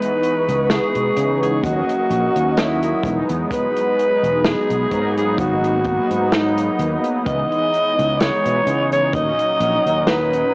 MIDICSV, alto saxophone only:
0, 0, Header, 1, 2, 480
1, 0, Start_track
1, 0, Tempo, 937500
1, 1797, Time_signature, 4, 2, 24, 8
1, 5397, End_track
2, 0, Start_track
2, 0, Title_t, "Alto saxophone"
2, 0, Program_c, 0, 65
2, 0, Note_on_c, 0, 71, 105
2, 356, Note_on_c, 0, 68, 95
2, 364, Note_off_c, 0, 71, 0
2, 726, Note_off_c, 0, 68, 0
2, 729, Note_on_c, 0, 68, 88
2, 838, Note_on_c, 0, 66, 102
2, 846, Note_off_c, 0, 68, 0
2, 1319, Note_on_c, 0, 64, 94
2, 1327, Note_off_c, 0, 66, 0
2, 1689, Note_off_c, 0, 64, 0
2, 1800, Note_on_c, 0, 71, 115
2, 2279, Note_on_c, 0, 68, 106
2, 2287, Note_off_c, 0, 71, 0
2, 2650, Note_off_c, 0, 68, 0
2, 2652, Note_on_c, 0, 68, 100
2, 2760, Note_on_c, 0, 66, 109
2, 2768, Note_off_c, 0, 68, 0
2, 3240, Note_on_c, 0, 63, 101
2, 3248, Note_off_c, 0, 66, 0
2, 3610, Note_off_c, 0, 63, 0
2, 3719, Note_on_c, 0, 75, 127
2, 4198, Note_on_c, 0, 73, 111
2, 4206, Note_off_c, 0, 75, 0
2, 4567, Note_off_c, 0, 73, 0
2, 4570, Note_on_c, 0, 73, 107
2, 4680, Note_on_c, 0, 75, 123
2, 4688, Note_off_c, 0, 73, 0
2, 5159, Note_on_c, 0, 71, 108
2, 5167, Note_off_c, 0, 75, 0
2, 5397, Note_off_c, 0, 71, 0
2, 5397, End_track
0, 0, End_of_file